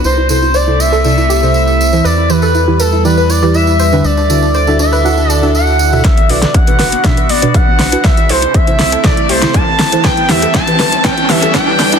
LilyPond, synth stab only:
\new Staff \with { instrumentName = "Synth stab" } { \time 4/4 \key e \minor \tempo 4 = 120 r8 <c e' a' c''>16 r8 <c e' a' c''>16 r8 <c e' a' d''>16 r8 <c e' a' c''>4 <e e' a' c''>16 | r8 <e e' g' b'>16 r8 <e e' g' b'>16 r8 <e e' g' d''>16 r8 <e e' g' b'>4 <d e' g' b'>16 | r8 <d d' e' fis' a' e''>16 r8 <d d' e' fis' a' e''>16 r8 <d d' e' fis' a' fis''>16 r8 <d d' e' fis' a' e''>4 <b, d' e' fis' a' e''>16 | r8 <b, d' fis' b'>16 r8 <b, d' fis' b'>16 r8 <b, d' fis' d''>16 r8 <b, d' fis' b'>4 <d' fis' b'>16 |
r8 <c e' a' c''>16 r8 <c e' a' c''>16 r8 <c e' a' d''>16 r8 <c e' a' c''>4 <e e' a' c''>16 | r8 <e e' g' b'>16 r8 <e e' g' b'>16 r4 <e e' g' b'>16 r8 <e e' g' b'>16 r8 | }